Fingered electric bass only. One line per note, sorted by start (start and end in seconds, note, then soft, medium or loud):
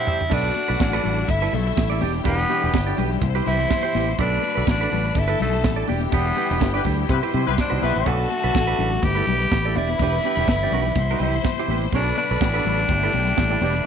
0.32 0.49 B1 loud
0.70 0.77 B1 loud
0.81 0.98 A1 medium
1.05 1.23 A1 medium
1.29 1.47 G1 medium
1.53 1.71 B1 medium
1.78 2.02 A1 medium
2.01 2.19 E1 loud
2.26 2.43 E1 loud
2.64 2.71 E1 medium
2.74 2.92 G1 medium
2.98 3.16 B1 medium
3.22 3.40 C2 loud
3.47 3.65 C2 loud
3.95 4.13 A1 medium
4.19 4.37 B1 loud
4.57 4.65 B1 loud
4.67 4.85 A1 medium
4.93 5.10 A1 medium
5.16 5.34 G1 loud
5.41 5.65 B1 medium
5.65 5.83 A1 medium
5.90 6.07 E1 medium
6.12 6.30 E1 loud
6.51 6.61 E1 medium
6.61 6.79 G1 medium
6.86 7.03 D2 medium
7.10 7.20 C3 loud
7.34 7.44 C3 loud
7.48 7.55 C2 medium
7.72 7.80 C2 medium
7.82 7.92 B1 medium
7.96 8.04 A1 medium
8.07 8.25 B1 loud
8.44 8.52 B1 medium
8.55 8.73 A1 medium
8.79 8.97 A1 medium
9.03 9.21 G1 loud
9.27 9.45 B1 medium
9.52 9.76 A1 medium
9.75 9.93 E1 loud
10.00 10.18 E1 loud
10.37 10.45 E1 loud
10.48 10.66 G1 loud
10.72 10.90 B1 medium
10.96 11.14 C2 loud
11.20 11.38 C2 loud
11.68 11.86 A1 medium
11.93 12.11 B1 loud
12.31 12.38 B1 medium
12.41 12.59 A1 loud
12.65 12.83 A1 medium
12.89 13.07 G1 loud
13.14 13.32 B1 medium
13.38 13.56 A1 loud
13.61 13.79 E1 loud